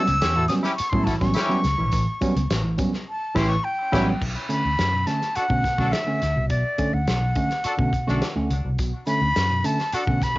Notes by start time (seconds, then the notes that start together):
Already playing: E6
0.07 C#2 B3 C#4, closed hi-hat, tambourine
0.21 E2 B3 C#4 G4 C#5, snare, closed hi-hat, tambourine
0.35 A2 E3 E4 F#4 A4
0.48 F#3 G3 B3 C#4 D#6, snare, closed hi-hat, tambourine
0.63 C#4 E4 G4, snare, closed hi-hat, tambourine
0.75 C#6, closed hi-hat, tambourine
0.80 muted fingered electric bass stroke
0.90 A2 F#3 G3 B3 C#4 E4 F#4 A4 C6, kick
1.04 A2 E3 E4 F#4 A4 A5, kick, snare, tambourine
1.08 closed hi-hat
1.19 A1 F#3 G3 B3 C#4 C#6, kick, snare, tambourine
1.34 C#4 E4 G4, snare, closed hi-hat, tambourine
1.49 F#3 G3 B3 C#4, tambourine
1.64 C#2, snare, closed hi-hat, tambourine
1.78 A#1 A2 E3
1.92 A1 A2 E3, kick, closed hi-hat, tambourine
2.21 F#3 G3 B3 C#4, kick, closed hi-hat, tambourine
2.36 C#2 B3 C#4, closed hi-hat
2.50 A1 B3 C#4, snare, closed hi-hat, tambourine
2.64 A2 E3
2.78 F#3 G3 B3 C#4, kick, closed hi-hat, tambourine
2.93 snare
3.09 A5
3.35 A1 A2 E3 C#4 E4 G4 C6, kick, snare, crash
3.49 C#6
3.64 G5
3.92 A1 F#3 G3 B3 C#4 E4 G4, kick, snare, crash
4.21 B1 B2, kick, crash
4.49 D3 A3 C#4 B5, closed hi-hat
4.64 D2 A3 C#4
4.78 F#2 A3 C#4, snare, closed hi-hat
4.93 B2
5.07 D3 A3 C#4 A5, snare, closed hi-hat
5.22 snare, closed hi-hat
5.35 D4 F#4 A4 F#5, muted fingered electric bass stroke, closed hi-hat
5.50 B2 D3 A3 C#4, kick
5.64 B2, kick, snare, closed hi-hat
5.78 B1 D3 A3 C#4 D4 F#4 A4, kick, snare
5.92 E5, snare, closed hi-hat
6.07 D3 A3 C#4
6.22 D2, snare, closed hi-hat
6.36 C2 B2
6.50 B1 B2 D5, kick, closed hi-hat
6.78 D3 A3 C#4, kick, closed hi-hat
6.93 D2 A3 C#4 F#5
7.07 B1 A3 C#4, snare, closed hi-hat
7.21 B2
7.35 D3 A3 C#4, kick, closed hi-hat
7.50 snare, closed hi-hat
7.64 D4 F#4 A4, muted fingered electric bass stroke, closed hi-hat
7.78 B2 D3 A3 C#4, kick
7.93 B2, kick, closed hi-hat
8.07 B1 D3 A3 C#4 D4 F#4 A4, snare
8.22 snare, closed hi-hat
8.36 D2 D3 A3 C#4
8.50 C#2, closed hi-hat
8.64 C2 B2
8.78 B1 B2, kick, closed hi-hat, tambourine
9.07 D3 A3 C#4 B5, closed hi-hat, tambourine
9.21 D2 A3 C#4
9.36 F#2 A3 C#4, snare, closed hi-hat, tambourine
9.50 B2
9.64 D3 A3 C#4 A5, closed hi-hat, tambourine
9.79 snare, tambourine
9.92 D4 F#4 A4 F#5, muted fingered electric bass stroke, closed hi-hat, tambourine
10.07 B2 D3 A3 C#4, kick
10.22 B2 B5, kick, snare, closed hi-hat, tambourine
10.35 D3 A3